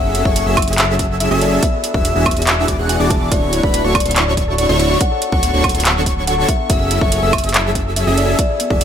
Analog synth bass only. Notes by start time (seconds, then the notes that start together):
Already playing: F#1
0.25 F#1
0.46 F#1
0.68 F#1
1.31 F#1
1.94 E1
2.15 E1
2.37 E1
2.68 E1
2.79 E1
3.00 E1
3.32 D1
3.63 D1
3.84 D1
4.06 D1
4.69 D1
5.32 D1
5.54 D1
5.75 D1
6.70 F#1
7.01 F#1
7.23 F#1
7.44 F#1
8.07 F#1
8.70 E1